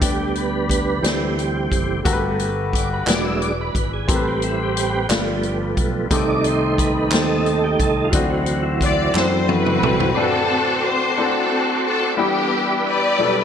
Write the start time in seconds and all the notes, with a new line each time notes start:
0.00 D2 D3 G3 B3 D4 G4 B4 D5, kick, closed hi-hat
0.35 B4, closed hi-hat
0.69 B4, kick, closed hi-hat
1.01 D2 D3 E3 G3 C4 E4 G4 C5 D5, closed hi-hat
1.06 snare
1.39 closed hi-hat
1.72 F#1, kick, closed hi-hat
2.03 G1 G2 G3 A3 B3 F#4 G4 A4 A#4, kick, closed hi-hat
2.13 B4
2.39 closed hi-hat
2.73 D5, kick, closed hi-hat
2.93 B4
3.06 E1 E3 F#3 G#3 D4 E4 G4 B4 D5, clap, closed hi-hat
3.10 snare
3.25 E5
3.41 D5, closed hi-hat
3.61 B4
3.75 G#1 B4, kick, closed hi-hat
3.93 G#4
4.08 A1 A2 G3 C4 G4 A4 A#4 B4, kick, closed hi-hat
4.12 A4 B4
4.27 G4
4.42 E4, closed hi-hat
4.63 G4
4.77 closed hi-hat
5.09 G1 G2 F3 A3 B3 D4 F4 G4 B4, snare, clap, closed hi-hat
5.43 closed hi-hat
5.77 B1, kick, closed hi-hat
6.11 C2 C3 D#3 A3 C4 D#4 G4 A4 D5, kick, closed hi-hat
6.44 C5, closed hi-hat
6.78 B4, kick, closed hi-hat
7.11 D#2 C4 D#4 G4 A4 C5, snare, clap, closed hi-hat
7.46 closed hi-hat
7.64 G4
7.80 C2 A4, kick, closed hi-hat
8.04 F4
8.11 D2 D3 E3 F#3 C4 D4 E4 F#4, kick, closed hi-hat
8.15 F#4
8.46 closed hi-hat
8.63 E4
8.81 D5, kick, closed hi-hat
9.14 F#2 C4 D4 E4 A4 C5, snare, clap
9.49 A3 E4 F#4 B4, high tom
9.66 mid tom
9.82 C2 C4 A4, mid tom
10.00 E4 C5, floor tom
10.14 D3 A3 C4 D4 F4 F#4 A4 D5 F#5 C6
10.19 A4
10.24 F#4
10.85 C5
11.17 A3 C4 D4 E4 F#4 A4 C5
11.24 F#4
11.85 A4
12.17 E3 G3 B3 D4 E4 G4 E5 B5
12.87 G4 B4 D5
13.19 B2 F#3 D4 E4 A4
13.25 G3